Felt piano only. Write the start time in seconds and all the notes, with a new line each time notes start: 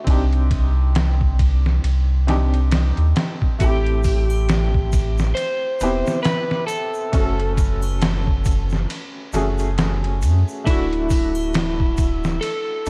0.04 C4 D4 D#4
0.10 G4
2.27 C4 D4 D#4 G4
3.59 A3 C4 E4
3.64 G4
5.81 B3 C4 E4 G4
7.12 A3 C#4 F#4
7.18 A4
9.33 A3 C#4 F#4 G#4
10.64 A3 D4 E4
10.70 F#4
12.86 A3